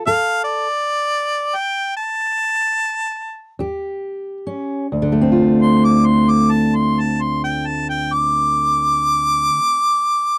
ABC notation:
X:1
M:12/8
L:1/16
Q:3/8=44
K:Dm
V:1 name="Harmonica"
f2 d6 g2 a8 z6 | z3 c' d' c' d' a c' a c' g a g d'8- d'2 |]
V:2 name="Steel-string acoustic guitar"
[D,,A]4 z12 z2 [_E,,G]4 _D2 | [D,,D,A,CF]24 |]